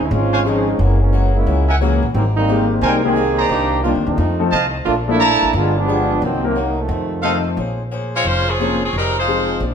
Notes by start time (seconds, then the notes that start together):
0.06 E4
0.11 G#1 C#3 F3 G#3 C4 C#4 F4
0.33 C5 C#5 F5 G#5
0.45 C#3 F3 G#3 C4 C#4 D#4 G#4
0.79 F#1 E3 F#3 G#3 A#3 C#4 E4 G#4
1.02 E3 G#3 A#3 C#4
1.13 F#3 A#3 E4 G#4
1.35 G#3 A#3 C#4 E4
1.47 C#2 F#3 A#3 E4 G#4
1.69 A#4 E5 F#5 G#5
1.81 E3 F#3 G#3 A#3 C#4 E4 F#4 G#4
2.02 A#1
2.14 G#1 D#3 G3 G#3 A#3 C4 G4
2.18 A#4
2.37 G3 A#3 C4 D#4
2.48 D#3 G#3 A#3 C4 G4 A#4
2.82 C2 G3 G#3 C4 D#4 G4 A#4 C5 G5 G#5
3.04 D#3 G#3 A#3 C4 G4 G#4
3.16 G#3 C4 G4 A#4
3.37 D#4 C5 D5 A#5
3.49 C2 C3 D#3 A#3 D4 G4
3.83 C3 D#3 G3 A#3 C4 D4 F4 G4
3.95 D2
4.05 D#2 F3 A3 C4 D#4
4.17 F2 D#3 A3 C4
4.40 F3 A3 C4 D#4 A4
4.52 C2 F2 D#3 A3 C4 C5 D#5 F5 A5
4.85 A#1 A#2 F3 A3 A#3 D4 F4
4.89 D4
5.08 F3 A3 A#3 D4 E4 A4
5.20 A#2 F3 A3 D4 D5 A5 A#5
5.42 A1
5.53 G1 G3 G#3 B3 D4 F4 G#4
5.78 F3 G#3 B3 D4
5.87 F3 G3 G#3 B3 D4 F4 G4 G#4
6.21 C2 C3 D#3 F#3 A#3 C4 D#4
6.44 C3 D#3 F#3 A#3 C4 D#4 A#4
6.55 C3 F#3 A#3 D#4
6.79 C3 D#3 F3 A3
6.88 F2 D#3 A3 C4
7.23 F2 D#3 F3 A3 C4 D#4 A4 C5 D#5 F5
7.57 A#1 A#3 C#4 G#4 C5
7.91 A#3 C#4 G#4 C5
8.16 G#3 C4 F4 C#5
8.24 F1 G#3 A#3 C#4 F4 G#4 C5
8.28 C5
8.49 F3 C4 C#4 G#4
8.59 F3 A#3 C4 C#4 G#4 C5
8.84 F3 C4 C#4 G#4
8.93 F1 F2 D#3 G#3 C4
8.98 G3 C4 D#4 A#4
9.18 G#3 D#4 F4 C5
9.28 F2 D#3 F3 G#3 C4 D#4 G#4
9.60 A#1 A#2 F3 G#3 D4